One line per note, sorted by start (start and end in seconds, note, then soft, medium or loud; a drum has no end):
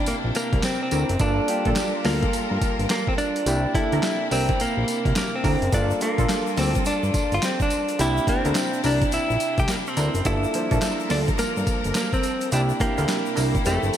0.00 1.18 C3 medium
0.00 1.18 A#3 medium
0.00 1.20 A#3 medium
0.00 1.18 D4 medium
0.00 1.20 D4 medium
0.00 1.18 E4 medium
0.00 1.22 E4 medium
0.00 1.21 G4 medium
0.00 1.22 A#4 medium
0.06 0.14 A#1 soft
0.06 0.15 A#3 medium
0.06 closed hi-hat loud
0.06 tambourine medium
0.24 0.32 A#1 medium
0.35 0.65 A#3 medium
0.35 closed hi-hat medium
0.35 tambourine medium
0.53 0.60 C2 loud
0.53 kick loud
0.53 closed hi-hat medium
0.63 0.81 C4 loud
0.63 snare loud
0.63 clap medium
0.63 closed hi-hat medium
0.63 tambourine medium
0.83 1.18 C4 medium
0.91 1.05 D2 medium
0.91 1.10 D4 medium
0.91 1.10 E4 medium
0.91 1.11 A#4 medium
0.91 closed hi-hat medium
0.91 tambourine medium
1.09 1.17 F#1 medium
1.09 closed hi-hat medium
1.19 1.40 G1 loud
1.19 3.44 G3 medium
1.19 1.43 A#3 medium
1.19 1.43 D4 medium
1.19 2.08 D4 loud
1.19 1.43 F4 medium
1.19 3.44 F4 medium
1.19 3.44 A4 medium
1.19 1.43 A4 medium
1.19 3.44 A#4 medium
1.19 kick loud
1.19 closed hi-hat medium
1.19 tambourine medium
1.48 2.34 A#3 medium
1.48 2.35 D4 medium
1.48 2.35 F4 medium
1.48 2.35 G4 medium
1.48 closed hi-hat loud
1.65 1.74 A#1 medium
1.65 1.78 A#3 medium
1.65 1.78 F4 medium
1.65 1.78 A4 medium
1.65 kick medium
1.65 closed hi-hat medium
1.76 snare loud
1.76 clap loud
1.76 closed hi-hat medium
1.76 tambourine loud
2.04 2.26 D2 loud
2.04 2.23 A#3 medium
2.04 2.90 A#3 loud
2.04 2.23 F4 medium
2.04 2.23 A4 medium
2.04 snare medium
2.04 open hi-hat medium
2.04 tambourine medium
2.23 kick medium
2.23 closed hi-hat medium
2.33 2.40 G2 soft
2.33 closed hi-hat medium
2.33 tambourine medium
2.51 2.58 G2 loud
2.62 kick loud
2.62 closed hi-hat medium
2.62 tambourine medium
2.79 2.87 G1 medium
2.79 closed hi-hat soft
2.90 3.07 A#3 medium
2.90 snare loud
2.90 clap medium
2.90 closed hi-hat medium
2.90 tambourine loud
3.07 3.13 C4 medium
3.07 kick medium
3.18 3.75 D4 loud
3.18 closed hi-hat medium
3.18 tambourine medium
3.36 closed hi-hat medium
3.46 3.67 C2 loud
3.46 5.70 C3 medium
3.46 3.69 A#3 medium
3.46 5.71 A#3 medium
3.46 3.69 D4 medium
3.46 5.71 D4 medium
3.46 5.70 E4 medium
3.46 3.70 E4 medium
3.46 3.70 G4 medium
3.46 closed hi-hat medium
3.46 tambourine medium
3.74 4.61 A#3 medium
3.74 4.61 D4 medium
3.74 4.61 E4 medium
3.74 4.27 E4 loud
3.74 4.61 A4 medium
3.74 kick loud
3.74 closed hi-hat medium
3.92 4.00 D2 loud
3.92 4.05 D4 medium
3.92 4.05 E4 medium
3.92 4.05 A#4 medium
3.92 closed hi-hat medium
4.03 snare loud
4.03 clap medium
4.03 closed hi-hat medium
4.03 tambourine loud
4.31 4.52 C2 medium
4.31 4.61 C4 medium
4.31 4.50 D4 medium
4.31 4.50 E4 medium
4.31 4.50 A#4 medium
4.31 open hi-hat medium
4.31 tambourine medium
4.49 kick loud
4.49 closed hi-hat medium
4.60 4.67 A#1 medium
4.60 5.16 A#3 medium
4.60 closed hi-hat medium
4.60 tambourine medium
4.77 4.85 A#1 medium
4.88 closed hi-hat medium
4.88 tambourine medium
5.05 5.13 C2 medium
5.05 kick medium
5.05 closed hi-hat medium
5.16 5.35 A#3 medium
5.16 snare loud
5.16 clap medium
5.16 closed hi-hat medium
5.16 tambourine loud
5.36 5.74 C4 medium
5.44 5.57 D2 loud
5.44 5.63 D4 medium
5.44 5.63 E4 medium
5.44 5.63 A#4 medium
5.44 kick loud
5.44 open hi-hat medium
5.44 tambourine medium
5.62 5.70 F#1 medium
5.62 closed hi-hat medium
5.72 5.93 G1 loud
5.72 7.97 G3 medium
5.72 5.96 A#3 medium
5.72 7.96 A#3 medium
5.72 5.96 D4 medium
5.72 6.00 D4 loud
5.72 7.97 F4 medium
5.72 5.96 F4 medium
5.72 7.97 A4 medium
5.72 5.96 A4 medium
5.72 kick loud
5.72 closed hi-hat medium
5.72 tambourine medium
5.72 shaker medium
5.90 shaker medium
6.01 6.87 A#3 medium
6.01 6.60 A#3 medium
6.01 6.87 D4 medium
6.01 6.88 F4 medium
6.01 6.88 A4 medium
6.01 closed hi-hat medium
6.01 shaker medium
6.18 6.26 A#1 loud
6.18 6.31 A#3 medium
6.18 6.31 F4 medium
6.18 6.31 A4 medium
6.18 kick medium
6.18 closed hi-hat soft
6.18 shaker medium
6.29 snare loud
6.29 clap loud
6.29 closed hi-hat medium
6.29 tambourine loud
6.29 shaker medium
6.47 shaker soft
6.57 6.78 D2 medium
6.57 6.76 A#3 medium
6.57 6.84 C4 medium
6.57 6.76 F4 medium
6.57 6.76 A4 medium
6.57 snare medium
6.57 open hi-hat medium
6.57 tambourine medium
6.57 shaker soft
6.75 kick loud
6.75 closed hi-hat medium
6.75 shaker soft
6.85 6.93 G2 medium
6.85 7.34 D4 medium
6.85 closed hi-hat loud
6.85 tambourine medium
6.85 shaker medium
7.03 7.11 G2 loud
7.03 shaker medium
7.14 kick loud
7.14 closed hi-hat medium
7.14 tambourine medium
7.14 shaker medium
7.32 7.40 G1 loud
7.32 7.44 F4 medium
7.32 closed hi-hat soft
7.32 shaker soft
7.42 7.62 C4 loud
7.42 snare loud
7.42 clap medium
7.42 closed hi-hat medium
7.42 tambourine loud
7.42 shaker medium
7.60 8.01 D4 loud
7.60 kick loud
7.60 shaker soft
7.70 closed hi-hat medium
7.70 tambourine medium
7.70 shaker medium
7.89 closed hi-hat medium
7.89 shaker medium
7.99 8.20 C2 loud
7.99 10.23 C3 medium
7.99 8.22 A#3 medium
7.99 10.23 A#3 medium
7.99 8.22 D4 medium
7.99 10.23 D4 medium
7.99 10.23 E4 medium
7.99 8.22 E4 medium
7.99 8.26 E4 loud
7.99 8.23 G4 medium
7.99 closed hi-hat medium
7.99 tambourine medium
7.99 shaker medium
8.17 shaker medium
8.27 9.13 A#3 medium
8.27 8.81 C4 loud
8.27 9.14 D4 medium
8.27 9.14 E4 medium
8.27 9.14 G4 medium
8.27 kick loud
8.27 closed hi-hat medium
8.27 shaker soft
8.45 8.53 D2 loud
8.45 8.57 D4 medium
8.45 8.57 E4 medium
8.45 8.58 A#4 medium
8.45 closed hi-hat medium
8.45 shaker medium
8.55 snare loud
8.55 clap loud
8.55 closed hi-hat medium
8.55 tambourine loud
8.55 shaker medium
8.73 shaker soft
8.84 9.05 C2 medium
8.84 9.03 D4 medium
8.84 9.13 D4 loud
8.84 9.03 E4 medium
8.84 9.03 A#4 medium
8.84 open hi-hat medium
8.84 tambourine medium
8.84 shaker soft
9.02 kick loud
9.02 closed hi-hat medium
9.02 shaker soft
9.12 9.20 A#1 soft
9.12 9.60 E4 loud
9.12 closed hi-hat medium
9.12 tambourine medium
9.12 shaker medium
9.30 9.38 A#1 medium
9.30 shaker medium
9.40 closed hi-hat medium
9.40 tambourine medium
9.40 shaker medium
9.58 9.66 C2 loud
9.58 9.70 G4 loud
9.58 kick loud
9.58 closed hi-hat soft
9.58 shaker medium
9.68 9.75 A#3 medium
9.68 snare loud
9.68 clap medium
9.68 closed hi-hat medium
9.68 tambourine medium
9.68 shaker medium
9.87 10.27 C4 medium
9.87 shaker soft
9.97 10.10 D2 medium
9.97 10.16 D4 medium
9.97 10.16 E4 medium
9.97 10.16 A#4 medium
9.97 closed hi-hat medium
9.97 tambourine medium
9.97 shaker medium
10.15 10.22 F#1 medium
10.15 closed hi-hat medium
10.15 shaker medium
10.25 10.46 G1 loud
10.25 12.50 F3 medium
10.25 12.50 G3 medium
10.25 10.48 A#3 medium
10.25 10.49 D4 medium
10.25 11.11 E4 loud
10.25 10.49 F4 medium
10.25 12.49 A4 medium
10.25 10.49 A4 medium
10.25 12.50 A#4 medium
10.25 kick loud
10.25 closed hi-hat medium
10.25 tambourine medium
10.25 shaker medium
10.44 shaker medium
10.54 11.41 F3 medium
10.54 11.40 A#3 medium
10.54 11.40 D4 medium
10.54 11.41 C5 medium
10.54 closed hi-hat medium
10.54 shaker soft
10.71 10.79 A#1 loud
10.71 10.84 A#3 medium
10.71 10.84 F4 medium
10.71 10.84 A4 medium
10.71 kick medium
10.71 closed hi-hat medium
10.71 shaker medium
10.82 snare loud
10.82 clap loud
10.82 closed hi-hat medium
10.82 tambourine loud
10.82 shaker medium
11.00 shaker medium
11.09 11.31 D2 medium
11.09 11.29 A#3 medium
11.09 11.19 D4 loud
11.09 11.29 F4 medium
11.09 11.29 A4 medium
11.09 snare medium
11.09 open hi-hat medium
11.09 tambourine medium
11.09 shaker soft
11.28 kick loud
11.28 closed hi-hat medium
11.28 shaker soft
11.38 11.46 G2 soft
11.38 11.96 A#3 medium
11.38 closed hi-hat loud
11.38 tambourine medium
11.38 shaker medium
11.57 11.65 G2 loud
11.57 shaker medium
11.67 kick loud
11.67 closed hi-hat medium
11.67 tambourine medium
11.67 shaker soft
11.84 11.93 G1 loud
11.84 closed hi-hat soft
11.84 shaker medium
11.95 12.13 A#3 loud
11.95 snare loud
11.95 clap medium
11.95 closed hi-hat medium
11.95 tambourine loud
11.95 shaker medium
12.13 12.49 C4 loud
12.13 kick medium
12.13 shaker soft
12.23 closed hi-hat medium
12.23 tambourine medium
12.23 shaker medium
12.41 closed hi-hat medium
12.41 shaker medium
12.52 12.73 C2 loud
12.52 13.64 C3 medium
12.52 12.75 A#3 medium
12.52 13.64 A#3 medium
12.52 13.64 D4 medium
12.52 12.75 D4 medium
12.52 12.61 D4 loud
12.52 13.97 E4 medium
12.52 12.75 E4 medium
12.52 12.76 G4 medium
12.52 closed hi-hat medium
12.52 tambourine medium
12.52 shaker medium
12.69 shaker medium
12.80 13.65 A#3 medium
12.80 13.66 A#3 loud
12.80 13.65 D4 medium
12.80 13.65 E4 medium
12.80 13.65 G4 medium
12.80 kick loud
12.80 closed hi-hat medium
12.80 shaker soft
12.97 13.06 D2 loud
12.97 13.10 D4 medium
12.97 13.10 E4 medium
12.97 13.10 A#4 medium
12.97 closed hi-hat medium
12.97 shaker medium
13.08 snare loud
13.08 clap loud
13.08 closed hi-hat medium
13.08 tambourine medium
13.08 shaker medium
13.26 shaker medium
13.35 13.58 C2 medium
13.35 13.55 D4 medium
13.35 13.55 E4 medium
13.35 13.55 A#4 medium
13.35 open hi-hat medium
13.35 tambourine medium
13.35 shaker soft
13.54 kick loud
13.54 closed hi-hat medium
13.54 shaker soft
13.65 13.79 F1 loud
13.65 13.97 F3 medium
13.65 13.73 G#3 medium
13.65 13.97 A3 medium
13.65 13.97 C4 medium
13.65 13.97 E4 medium
13.65 13.97 G4 medium
13.65 13.97 A4 medium
13.65 closed hi-hat loud
13.65 tambourine medium
13.65 shaker medium
13.72 13.97 A3 medium
13.83 13.91 G1 loud
13.83 shaker medium
13.93 closed hi-hat medium
13.93 tambourine medium
13.93 shaker soft